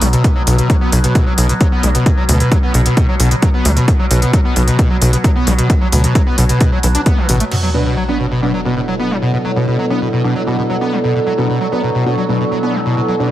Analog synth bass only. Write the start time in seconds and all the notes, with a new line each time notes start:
0.02 B1
0.47 B1
0.92 B1
1.38 B1
1.83 B1
2.29 D2
2.74 B1
3.20 B1
3.65 D2
4.11 B1
4.56 B1
5.02 B1
5.47 B1
5.92 D2
6.38 B1
6.83 B1
7.29 A1